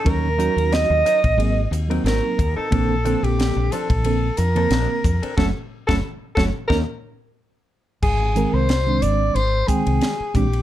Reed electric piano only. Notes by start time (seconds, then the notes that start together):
0.04 F#3 C#4 D#4 A#4
0.37 F#3 C#4 D#4 F#4
1.37 F#3 A#3 C4 G#4
1.71 C4 F#4
1.88 F#3 A#3 C4 D#4
2.71 D3 A#3 C4 A4
3.05 D3 A#3 C4 A4
4.04 D3 A#3 C4 A4
4.38 C4 D4
4.55 D3 A#3 C4 A#4
5.37 F#3 A3 C#4
5.89 F#3 A3 C#4
6.38 F#3 A3 C#4
6.70 A#3 C#4 D#4
8.21 C4 G4
8.35 D#3 G#3 C4 A#4
8.86 D#3 G#3 C4 D4
9.68 D#3 G#3 C4 G5
10.34 D#3 G#3 C4 D4
10.53 C4 G4